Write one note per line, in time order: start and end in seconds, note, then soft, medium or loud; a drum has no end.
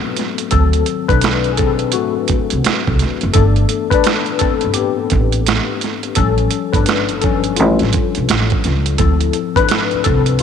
0.00 0.48 E3 soft
0.00 0.52 F#3 soft
0.00 0.54 A3 medium
0.00 0.54 B3 soft
0.00 0.53 C4 medium
0.00 0.54 D4 medium
0.00 0.54 F#4 medium
0.00 0.51 A4 medium
0.00 0.54 B4 medium
0.16 snare soft
0.16 closed hi-hat soft
0.38 closed hi-hat soft
0.51 0.81 D2 medium
0.51 1.54 D#3 soft
0.51 1.54 F#3 soft
0.51 1.06 C4 medium
0.51 1.11 A4 medium
0.51 kick medium
0.51 closed hi-hat medium
0.73 closed hi-hat soft
0.86 closed hi-hat medium
1.08 1.90 B1 medium
1.08 1.50 D4 medium
1.08 1.54 B4 medium
1.08 kick medium
1.08 closed hi-hat soft
1.21 finger snap medium
1.21 snare loud
1.21 closed hi-hat medium
1.44 closed hi-hat soft
1.52 1.58 G#4 medium
1.57 1.92 C4 medium
1.57 1.91 A4 medium
1.57 kick medium
1.57 closed hi-hat medium
1.79 closed hi-hat soft
1.92 2.61 A3 medium
1.92 2.60 F#4 medium
1.92 closed hi-hat medium
2.28 muted upright bass stroke soft
2.28 kick medium
2.28 closed hi-hat medium
2.50 2.63 C2 medium
2.50 closed hi-hat soft
2.64 finger snap medium
2.64 muted upright bass stroke soft
2.64 snare loud
2.64 closed hi-hat medium
2.88 2.98 C2 medium
2.88 kick medium
2.99 snare soft
2.99 closed hi-hat soft
3.21 3.33 F#1 medium
3.21 closed hi-hat soft
3.33 3.64 G1 medium
3.33 4.36 E3 soft
3.33 4.37 A3 soft
3.33 4.37 B3 soft
3.33 3.89 D4 medium
3.33 3.93 A4 medium
3.33 kick medium
3.33 closed hi-hat medium
3.56 closed hi-hat soft
3.69 closed hi-hat medium
3.90 4.38 D4 medium
3.90 4.41 B4 medium
3.90 kick medium
3.90 closed hi-hat soft
4.04 finger snap medium
4.04 snare loud
4.04 closed hi-hat medium
4.26 closed hi-hat soft
4.39 4.74 C4 medium
4.39 4.76 A4 medium
4.39 muted upright bass stroke soft
4.39 kick medium
4.39 closed hi-hat medium
4.61 4.74 G1 medium
4.61 closed hi-hat soft
4.74 5.43 B3 medium
4.74 5.41 G4 medium
4.74 closed hi-hat medium
5.10 5.59 A1 medium
5.10 kick medium
5.10 closed hi-hat medium
5.32 closed hi-hat soft
5.47 finger snap medium
5.47 snare loud
5.47 closed hi-hat medium
5.81 snare soft
5.81 closed hi-hat soft
6.03 closed hi-hat soft
6.15 6.46 A1 medium
6.15 7.22 F3 soft
6.15 7.22 G3 soft
6.15 6.71 C#4 medium
6.15 6.76 A4 medium
6.15 kick medium
6.15 closed hi-hat medium
6.38 closed hi-hat soft
6.51 closed hi-hat medium
6.73 7.60 G1 medium
6.73 7.20 D4 medium
6.73 7.23 B4 medium
6.73 kick medium
6.73 closed hi-hat soft
6.86 finger snap medium
6.86 snare loud
6.86 closed hi-hat medium
7.09 closed hi-hat soft
7.21 7.55 F3 soft
7.21 7.55 G3 soft
7.21 7.56 C#4 medium
7.21 7.58 A4 medium
7.21 kick medium
7.21 closed hi-hat medium
7.44 closed hi-hat soft
7.56 7.77 A1 medium
7.56 8.25 G3 medium
7.56 8.24 F4 medium
7.56 closed hi-hat medium
7.79 7.92 A1 medium
7.79 closed hi-hat soft
7.83 snare soft
7.93 kick medium
7.93 closed hi-hat medium
8.15 8.27 B1 medium
8.15 closed hi-hat soft
8.29 8.48 A1 medium
8.29 finger snap medium
8.29 snare loud
8.29 closed hi-hat medium
8.50 kick medium
8.50 closed hi-hat soft
8.64 8.94 C#2 medium
8.64 snare soft
8.64 closed hi-hat soft
8.86 closed hi-hat soft
8.98 9.29 D2 medium
8.98 9.50 F3 soft
8.98 9.54 C4 medium
8.98 9.50 E4 soft
8.98 9.58 A4 medium
8.98 kick medium
8.98 closed hi-hat medium
9.21 closed hi-hat soft
9.33 closed hi-hat medium
9.56 10.02 D4 medium
9.56 10.06 B4 loud
9.56 kick medium
9.56 closed hi-hat soft
9.69 finger snap medium
9.69 snare loud
9.69 closed hi-hat medium
9.91 muted upright bass stroke soft
9.91 closed hi-hat soft
10.04 10.35 C2 medium
10.04 10.39 C4 medium
10.04 10.41 A4 medium
10.04 kick medium
10.04 closed hi-hat medium
10.26 closed hi-hat soft
10.39 closed hi-hat medium